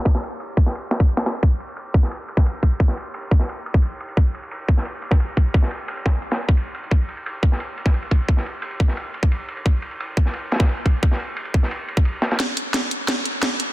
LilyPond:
\new DrumStaff \with { instrumentName = "Drums" } \drummode { \time 4/4 \tempo 4 = 175 <bd cymr sn>16 <cymr sn>16 cymr8 cymr16 cymr16 bd16 sn16 cymr8 <cymr sn>16 <bd cymr>16 cymr16 <cymr sn>16 <cymr sn>8 | <bd cymr>8 cymr16 cymr16 cymr8 bd16 sn16 cymr8 cymr16 <bd sn>16 cymr16 cymr16 <bd cymr>8 | <bd cymr>16 sn16 cymr8 cymr16 cymr16 bd16 sn16 cymr8 cymr16 bd16 cymr8 cymr16 cymr16 | <bd cymr>8 cymr16 cymr16 cymr8 bd16 sn16 cymr8 cymr16 <bd sn>16 cymr16 cymr16 <bd cymr>8 |
<bd cymr>16 sn16 cymr8 cymr16 cymr16 <bd sn>8 cymr16 <cymr sn>8 <bd cymr>16 cymr8 cymr16 cymr16 | <bd cymr>8 cymr16 cymr16 cymr8 <bd cymr>16 sn16 cymr8 cymr16 <bd sn>16 cymr16 cymr16 <bd cymr>8 | <bd cymr>16 sn16 cymr8 cymr16 cymr16 bd16 sn16 cymr8 cymr16 bd16 cymr8 cymr16 cymr16 | <bd cymr>8 cymr16 cymr16 cymr8 <bd cymr>16 sn16 cymr8 <cymr sn>32 <cymr sn>32 <bd cymr sn>32 <cymr sn>32 cymr16 cymr16 <bd cymr>8 |
<bd cymr>16 sn16 cymr8 cymr16 cymr16 <bd cymr>16 sn16 cymr8 cymr16 bd16 cymr8 <cymr sn>16 <cymr sn>16 | <hh bd sn>8 hh8 <hh bd sn>8 hh8 <hh bd sn>8 hh8 <hh bd sn>8 hh8 | }